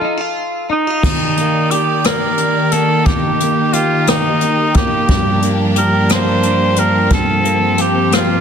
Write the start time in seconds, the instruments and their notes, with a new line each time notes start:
Already playing: cor anglais F4, clean electric guitar A4
0.01 clean electric guitar D#4
0.17 clean electric guitar F4
0.70 clean electric guitar D#4, cor anglais D#4
0.87 clean electric guitar F4
1.03 clean electric guitar D#3, string section D#3 A#3 G4 D5, kick, crash
1.37 clean electric guitar A#3, closed hi-hat
1.71 cor anglais G4, clean electric guitar G4, closed hi-hat
2.04 clean electric guitar A#3, cor anglais A#4, cross-stick, closed hi-hat
2.38 closed hi-hat
2.72 clean electric guitar A#3, cor anglais A4, closed hi-hat
3.06 clean electric guitar D#3, string section D#4, cor anglais G4, kick, closed hi-hat
3.40 clean electric guitar A#3, closed hi-hat
3.73 cor anglais F4, clean electric guitar G4, closed hi-hat
4.07 clean electric guitar A#3, cor anglais D#4, cross-stick, closed hi-hat
4.41 closed hi-hat
4.74 clean electric guitar A#3, cor anglais G4, kick, closed hi-hat
5.08 clean electric guitar G2, string section F3 D4, kick, closed hi-hat
5.41 clean electric guitar A#3, closed hi-hat
5.76 clean electric guitar G4, cor anglais A#4, closed hi-hat
6.09 clean electric guitar A#3, cor anglais C5, cross-stick, closed hi-hat
6.43 clean electric guitar D4, closed hi-hat
6.76 clean electric guitar A#3, cor anglais A#4, closed hi-hat
7.10 clean electric guitar G2, string section C4, cor anglais A4, kick, closed hi-hat
7.44 clean electric guitar A#3, closed hi-hat
7.78 clean electric guitar G4, cor anglais G4, closed hi-hat
8.11 clean electric guitar A#3, cor anglais F4, cross-stick, closed hi-hat